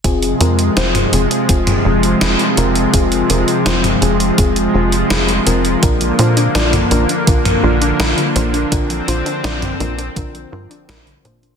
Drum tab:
HH |xxxxxxxxxx-xxxxx|xxxxxxxxxx-xxxxx|xxxxxxxxxx-xxxxx|xxxxxxxxxx-xxxxx|
SD |----o-------o---|----o-------o---|----o-------o---|----o-------o---|
T2 |-----o---o------|-----o----------|-----o---o------|-----o----------|
BD |o-------o-------|o-------o-------|o-------o-------|o-------o-------|